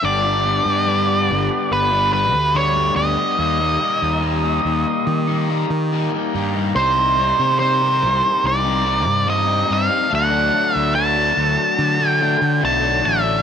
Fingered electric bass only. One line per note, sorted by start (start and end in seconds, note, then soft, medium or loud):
0.03 0.59 G1 medium
0.65 1.30 G2 medium
1.29 1.48 G1 medium
1.71 2.33 G1 medium
2.33 2.90 D2 medium
2.96 3.15 D2 medium
3.38 3.76 D#2 medium
4.02 4.58 D#2 medium
4.65 4.84 D#2 medium
5.07 5.63 D#3 medium
5.70 6.08 D#3 medium
6.35 6.71 G2 medium
6.76 7.32 C2 loud
7.39 8.04 C3 medium
8.03 8.21 C2 medium
8.44 9.07 C2 medium
9.07 9.63 G2 medium
9.70 9.88 G2 medium
10.13 10.49 D2 medium
10.75 11.31 D2 medium
11.37 11.56 D2 medium
11.79 12.35 D3 medium
12.41 12.60 D3 medium
12.63 13.01 B1 medium
13.06 13.42 A1 medium